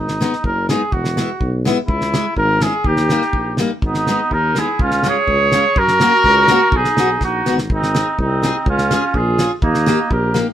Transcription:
Already playing: tuba G#1, trumpet D#4
0.08 snare
0.21 steel-string acoustic guitar G#3 B3 D#4, snare
0.33 snare
0.44 tuba F#1, trumpet A#4, kick
0.69 steel-string acoustic guitar G#3 B3 D#4, trumpet G#4, snare
0.92 tuba E1, trumpet F#4, kick
1.05 snare
1.17 steel-string acoustic guitar G#3 B3 E4, snare
1.40 tuba B1, kick
1.65 steel-string acoustic guitar G#3 B3 E4, snare
1.88 tuba C#2, trumpet E4, kick
2.01 snare
2.14 steel-string acoustic guitar G#3 C#4 E4, snare
2.36 tuba G#1, trumpet A#4, kick
2.61 steel-string acoustic guitar G#3 C#4 E4, trumpet G#4, snare
2.84 tuba D#2, clarinet D#4, trumpet G4, kick
2.97 snare
3.09 steel-string acoustic guitar G3 A#3 D#4, snare
3.22 snare
3.33 tuba A#1, kick
3.57 steel-string acoustic guitar G3 A#3 D#4, snare
3.81 tuba G#1, clarinet B3, trumpet D#4, kick
3.94 snare
4.07 steel-string acoustic guitar G#3 B3 D#4, snare
4.30 tuba D#2, clarinet D#4, trumpet A#4, kick
4.55 steel-string acoustic guitar G#3 B3 D#4, trumpet G#4, snare
4.60 clarinet E4
4.79 tuba C#2, trumpet F4, kick
4.83 clarinet C#4
4.91 snare
5.03 steel-string acoustic guitar G#3 C#4 F4, snare
5.08 clarinet G#4, trumpet C#5
5.27 tuba C#2, kick
5.52 steel-string acoustic guitar G#3 C#4 F4, snare
5.76 tuba F#2, trumpet A#4, kick
5.80 clarinet F#4
5.88 snare
6.00 steel-string acoustic guitar A#3 C#4 F#4, snare
6.24 tuba C#2, kick
6.47 steel-string acoustic guitar A#3 C#4 F#4, snare
6.72 tuba B1, kick
6.76 clarinet D#4, trumpet G#4
6.84 snare
6.96 tuba B1, steel-string acoustic guitar B3 D#4 F#4, snare
7.21 tuba A#1, trumpet F#4, kick, snare
7.25 clarinet D#4
7.46 tuba G#1, steel-string acoustic guitar B3 D#4 F#4, snare
7.58 snare
7.70 tuba G#1, clarinet C4, trumpet D#4, kick
7.83 snare
7.95 steel-string acoustic guitar C4 D#4 G#4, snare
8.18 tuba C2, clarinet C4, trumpet D#4, kick
8.43 steel-string acoustic guitar C4 D#4 G#4, snare
8.66 tuba C#2, clarinet C#4, trumpet F4, kick
8.78 snare
8.91 steel-string acoustic guitar C#4 F4 G#4, snare
9.14 tuba A#1, clarinet F4, trumpet G#4, kick
9.38 steel-string acoustic guitar C#4 F4 G#4, snare
9.62 tuba D#2, clarinet A#3, trumpet D#4, kick
9.74 snare
9.86 steel-string acoustic guitar A#3 D#4 G4, snare
10.11 tuba A#1, clarinet G4, trumpet A#4, kick
10.34 steel-string acoustic guitar A#3 D#4 G4, snare

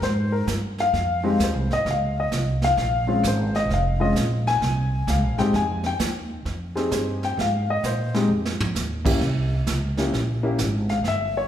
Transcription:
0.01 upright bass G#2, upright piano C5, brush sweep, kick, snare
0.32 upright piano A#4
0.47 upright bass G2, kick, snare, hi-hat pedal
0.78 upright piano F5, snare
0.93 upright bass F2, brush sweep, kick, snare
1.23 upright piano G#3 C4 D#4 G4
1.40 upright bass D#2, upright piano C5, kick, snare, hi-hat pedal
1.54 upright bass C2
1.70 upright bass G#1, upright piano D#5, snare
1.86 upright bass C#2, brush sweep, kick, snare
1.91 upright piano F5
2.20 upright piano D#5
2.32 upright bass C2, kick, snare, hi-hat pedal
2.62 upright piano F5, snare
2.77 upright bass A#1, brush sweep, kick, snare
3.07 upright piano G#3 C4 C#4 F4
3.23 upright bass G#1, kick, snare, hi-hat pedal
3.27 upright piano C5
3.55 upright piano D#5, snare
3.69 upright bass F1, brush sweep, kick, snare
3.74 upright piano F5
4.00 upright piano G#3 C4 C#4 F4 D#5
4.16 upright bass A#1, kick, snare, hi-hat pedal
4.47 upright piano G#5, snare
4.61 upright bass C2, brush sweep, kick, snare
5.07 upright bass C#2, upright piano F5, kick, snare, hi-hat pedal
5.22 upright bass A#1
5.38 upright bass G#1, upright piano G#3 C4 D#4 G4 G5, snare
5.53 upright bass F2, upright piano G#5, brush sweep, kick, snare
5.84 upright piano G5, snare
5.99 upright bass D#2, kick, snare, hi-hat pedal
6.45 upright bass F2, brush sweep, kick, snare
6.75 upright piano C4 D#4 G4 G#4, snare
6.91 upright bass G2, kick, snare, hi-hat pedal
7.23 upright piano G5, snare
7.37 upright bass G#2, upright piano F5, brush sweep, kick, snare
7.70 upright piano D#5
7.83 upright bass A#2, upright piano C5, kick, snare, hi-hat pedal
8.14 upright piano G#3 C4 D#4 G4, snare
8.29 upright bass F2
8.45 snare
8.59 muted upright bass stroke, floor tom
8.75 upright bass D#2, snare, hi-hat pedal
9.05 upright piano A#3 C#4 E4 G4, kick, crash
9.21 upright bass C2, brush sweep, kick, snare
9.67 upright bass C#2, kick, snare, hi-hat pedal
9.97 upright piano A#3 C#4 E4 G4, snare
10.12 upright bass A#1, brush sweep, kick, snare
10.43 upright piano A#3 C#4 E4 G4
10.58 upright bass G#1, kick, snare, hi-hat pedal
10.89 upright piano F5, snare
11.04 upright bass G1, upright piano E5, brush sweep, kick, snare
11.37 upright piano C#5

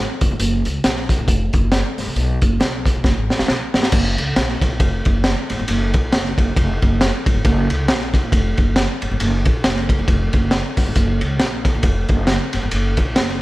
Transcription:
0.21 upright bass F#1, kick, closed hi-hat
0.31 upright bass G1
0.40 upright bass F#1, closed hi-hat
0.65 upright bass C#2, closed hi-hat
0.84 upright bass A#1, snare, closed hi-hat
0.97 snare
1.09 kick, snare, closed hi-hat
1.19 upright bass A#1
1.28 upright bass F1, kick, closed hi-hat
1.53 upright bass F#1, kick, closed hi-hat
1.72 snare, closed hi-hat
1.98 upright bass G#1, snare, open hi-hat
2.07 upright bass C2
2.16 upright bass B1, closed hi-hat
2.42 upright bass F#1, kick, closed hi-hat
2.60 upright bass B1, snare, closed hi-hat
2.86 kick, snare, closed hi-hat
2.95 upright bass B1
3.04 upright bass F#1, kick, snare
3.17 upright bass G#1
3.30 snare
3.39 upright bass A#1, snare
3.48 upright bass B1, snare
3.74 upright bass G1, snare
3.83 snare
3.92 upright bass F#1, kick, crash
4.18 upright bass C#2, ride
4.36 upright bass A#1, snare, ride
4.49 snare
4.61 upright bass A#1, kick, snare, ride
4.80 upright bass F1, kick, ride
5.05 upright bass F#1, kick, ride
5.24 snare, ride
5.50 upright bass G#1, snare, ride
5.59 upright bass G1
5.68 upright bass F#1, ride
5.94 upright bass A#1, kick, ride
6.12 upright bass F#1, snare, ride
6.25 snare
6.38 upright bass F#1, kick, ride
6.56 upright bass F1, kick, ride
6.82 upright bass F#1, kick, ride
7.01 snare, ride
7.26 upright bass G#1, kick, ride
7.34 upright bass G1
7.45 upright bass F#1, kick, ride
7.70 upright bass C#2, ride
7.88 upright bass A#1, snare, ride
8.01 snare
8.14 kick, snare, ride
8.23 upright bass A#1
8.32 upright bass F1, kick, ride
8.57 upright bass F#1, kick, ride
8.76 snare, ride
9.02 upright bass F#1, ride
9.11 upright bass G1
9.20 upright bass F#1, ride
9.45 upright bass A#1, kick, ride
9.64 upright bass F#1, snare, ride
9.76 snare
9.89 kick, ride
9.99 upright bass F#1
10.08 upright bass F1, kick, ride
10.33 upright bass F#1, kick, ride
10.51 snare, ride
10.77 upright bass G#1, kick, snare, open hi-hat, ride
10.87 upright bass G1
10.95 upright bass F#1, kick, hi-hat pedal, ride
11.21 upright bass C#2, ride
11.39 upright bass A#1, snare, ride
11.64 kick, snare, ride
11.75 upright bass A#1
11.83 upright bass F1, kick, ride
12.08 upright bass F#1, kick, ride
12.27 snare, ride
12.53 upright bass F#1, snare, ride
12.63 upright bass G1
12.71 upright bass F#1, ride
12.97 upright bass A#1, kick, ride
13.16 upright bass F#1, snare, ride
13.28 snare

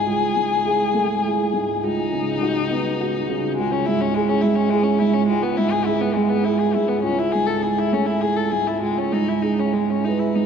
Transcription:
Already playing: violin G#4
0.07 upright piano C#2
0.36 upright piano G#2
0.65 upright piano E4 G#4
0.94 upright piano A3
1.25 upright piano E4 G#4
1.53 upright piano G#2
1.83 upright piano C#2, violin D#4
2.13 upright piano C#3
2.41 upright piano D#4 F#4
2.70 upright piano B3
3.00 upright piano D#4 F#4
3.29 upright piano C#3
3.57 upright piano C#2, violin G#3
3.72 violin C#4
3.86 upright piano G#2, violin E4
4.01 violin C#4
4.14 violin G#3, upright piano E4 G#4
4.29 violin C#4
4.41 upright piano G#3, violin E4
4.56 violin C#4
4.70 violin G#3, upright piano E4 G#4
4.83 violin C#4
4.99 upright piano G#2, violin E4
5.14 violin C#4
5.27 upright piano C#2, violin G#3
5.42 violin B3
5.57 upright piano G#2, violin E4
5.71 violin G#4
5.85 violin E4, upright piano E4 G#4
6.01 violin B3
6.14 violin G#3, upright piano G#3
6.29 violin B3
6.45 violin E4, upright piano E4 G#4
6.59 violin G#4
6.75 upright piano G#2, violin E4
6.88 violin B3
7.03 upright piano C#2, violin C#4
7.19 violin E4
7.32 upright piano G#2, violin G#4
7.46 violin A4
7.62 upright piano E4 G#4, violin G#4
7.78 violin E4
7.92 upright piano A3, violin C#4
8.06 violin E4
8.21 upright piano E4 G#4, violin G#4
8.36 violin A4
8.51 upright piano G#2, violin G#4
8.67 violin E4
8.82 upright piano C#2, violin G#3
8.98 violin C#4
9.12 upright piano G#2, violin D#4
9.29 violin E4
9.42 violin D#4, upright piano E4 G#4
9.59 violin C#4
9.73 violin G#3, upright piano G#3
9.90 violin C#4
10.04 violin D#4, upright piano E4 G#4 B4
10.19 violin E4
10.35 upright piano G#2, violin D#4

